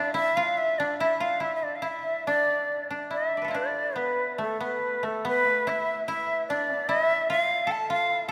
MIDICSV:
0, 0, Header, 1, 3, 480
1, 0, Start_track
1, 0, Tempo, 820793
1, 85, Time_signature, 2, 2, 24, 8
1, 566, Tempo, 855920
1, 2966, Tempo, 811908
1, 4782, End_track
2, 0, Start_track
2, 0, Title_t, "Shakuhachi"
2, 0, Program_c, 0, 77
2, 0, Note_on_c, 0, 74, 87
2, 77, Note_off_c, 0, 74, 0
2, 81, Note_on_c, 0, 76, 96
2, 209, Note_on_c, 0, 77, 90
2, 218, Note_off_c, 0, 76, 0
2, 337, Note_on_c, 0, 76, 95
2, 345, Note_off_c, 0, 77, 0
2, 459, Note_on_c, 0, 74, 81
2, 467, Note_off_c, 0, 76, 0
2, 573, Note_off_c, 0, 74, 0
2, 581, Note_on_c, 0, 76, 81
2, 697, Note_on_c, 0, 77, 79
2, 706, Note_off_c, 0, 76, 0
2, 814, Note_on_c, 0, 76, 82
2, 822, Note_off_c, 0, 77, 0
2, 893, Note_off_c, 0, 76, 0
2, 897, Note_on_c, 0, 76, 52
2, 939, Note_on_c, 0, 74, 75
2, 947, Note_off_c, 0, 76, 0
2, 1008, Note_on_c, 0, 77, 59
2, 1016, Note_off_c, 0, 74, 0
2, 1052, Note_off_c, 0, 77, 0
2, 1052, Note_on_c, 0, 77, 71
2, 1079, Note_on_c, 0, 76, 77
2, 1085, Note_off_c, 0, 77, 0
2, 1290, Note_off_c, 0, 76, 0
2, 1293, Note_on_c, 0, 74, 89
2, 1650, Note_off_c, 0, 74, 0
2, 1779, Note_on_c, 0, 76, 71
2, 2015, Note_on_c, 0, 74, 77
2, 2024, Note_off_c, 0, 76, 0
2, 2253, Note_on_c, 0, 71, 71
2, 2262, Note_off_c, 0, 74, 0
2, 2494, Note_off_c, 0, 71, 0
2, 2500, Note_on_c, 0, 69, 64
2, 2608, Note_off_c, 0, 69, 0
2, 2618, Note_on_c, 0, 71, 66
2, 2854, Note_on_c, 0, 69, 70
2, 2862, Note_off_c, 0, 71, 0
2, 2968, Note_off_c, 0, 69, 0
2, 2985, Note_on_c, 0, 71, 90
2, 3227, Note_on_c, 0, 76, 85
2, 3236, Note_off_c, 0, 71, 0
2, 3447, Note_off_c, 0, 76, 0
2, 3451, Note_on_c, 0, 76, 82
2, 3674, Note_off_c, 0, 76, 0
2, 3696, Note_on_c, 0, 74, 86
2, 3932, Note_on_c, 0, 76, 97
2, 3941, Note_off_c, 0, 74, 0
2, 4171, Note_off_c, 0, 76, 0
2, 4184, Note_on_c, 0, 77, 92
2, 4425, Note_on_c, 0, 81, 95
2, 4434, Note_off_c, 0, 77, 0
2, 4536, Note_off_c, 0, 81, 0
2, 4549, Note_on_c, 0, 77, 91
2, 4761, Note_off_c, 0, 77, 0
2, 4782, End_track
3, 0, Start_track
3, 0, Title_t, "Koto"
3, 0, Program_c, 1, 107
3, 0, Note_on_c, 1, 62, 69
3, 0, Note_on_c, 1, 64, 66
3, 80, Note_off_c, 1, 64, 0
3, 82, Note_on_c, 1, 64, 75
3, 215, Note_on_c, 1, 65, 83
3, 251, Note_off_c, 1, 64, 0
3, 464, Note_off_c, 1, 62, 0
3, 466, Note_on_c, 1, 62, 75
3, 586, Note_on_c, 1, 64, 77
3, 620, Note_off_c, 1, 65, 0
3, 698, Note_on_c, 1, 65, 67
3, 732, Note_off_c, 1, 64, 0
3, 809, Note_on_c, 1, 64, 61
3, 843, Note_off_c, 1, 65, 0
3, 955, Note_off_c, 1, 62, 0
3, 955, Note_off_c, 1, 64, 0
3, 955, Note_on_c, 1, 62, 61
3, 1042, Note_off_c, 1, 62, 0
3, 1044, Note_on_c, 1, 64, 65
3, 1297, Note_on_c, 1, 62, 66
3, 1409, Note_off_c, 1, 64, 0
3, 1409, Note_on_c, 1, 63, 65
3, 1493, Note_off_c, 1, 62, 0
3, 1493, Note_off_c, 1, 63, 0
3, 1493, Note_on_c, 1, 62, 65
3, 1652, Note_off_c, 1, 62, 0
3, 1652, Note_on_c, 1, 62, 57
3, 1765, Note_on_c, 1, 64, 52
3, 1910, Note_off_c, 1, 62, 0
3, 1910, Note_off_c, 1, 64, 0
3, 1910, Note_on_c, 1, 62, 52
3, 1914, Note_on_c, 1, 74, 24
3, 1939, Note_on_c, 1, 71, 28
3, 1955, Note_on_c, 1, 69, 32
3, 1976, Note_on_c, 1, 65, 33
3, 1987, Note_off_c, 1, 62, 0
3, 1989, Note_on_c, 1, 64, 37
3, 2011, Note_on_c, 1, 62, 56
3, 2242, Note_on_c, 1, 59, 55
3, 2482, Note_on_c, 1, 57, 61
3, 2603, Note_off_c, 1, 59, 0
3, 2605, Note_on_c, 1, 59, 58
3, 2811, Note_off_c, 1, 74, 0
3, 2841, Note_off_c, 1, 57, 0
3, 2844, Note_on_c, 1, 57, 58
3, 2935, Note_off_c, 1, 71, 0
3, 2964, Note_off_c, 1, 59, 0
3, 2966, Note_on_c, 1, 59, 72
3, 3025, Note_off_c, 1, 69, 0
3, 3114, Note_off_c, 1, 57, 0
3, 3114, Note_off_c, 1, 59, 0
3, 3114, Note_on_c, 1, 57, 72
3, 3213, Note_off_c, 1, 64, 0
3, 3215, Note_off_c, 1, 65, 0
3, 3215, Note_on_c, 1, 64, 70
3, 3394, Note_off_c, 1, 62, 0
3, 3456, Note_off_c, 1, 64, 0
3, 3458, Note_on_c, 1, 64, 79
3, 3706, Note_on_c, 1, 62, 70
3, 3854, Note_off_c, 1, 62, 0
3, 3854, Note_on_c, 1, 59, 70
3, 3933, Note_off_c, 1, 64, 0
3, 3935, Note_on_c, 1, 64, 80
3, 4178, Note_on_c, 1, 65, 80
3, 4213, Note_off_c, 1, 64, 0
3, 4398, Note_on_c, 1, 69, 79
3, 4531, Note_off_c, 1, 65, 0
3, 4534, Note_on_c, 1, 65, 73
3, 4557, Note_off_c, 1, 57, 0
3, 4664, Note_off_c, 1, 65, 0
3, 4664, Note_on_c, 1, 64, 73
3, 4760, Note_off_c, 1, 69, 0
3, 4762, Note_on_c, 1, 69, 72
3, 4782, Note_off_c, 1, 59, 0
3, 4782, Note_off_c, 1, 64, 0
3, 4782, Note_off_c, 1, 69, 0
3, 4782, End_track
0, 0, End_of_file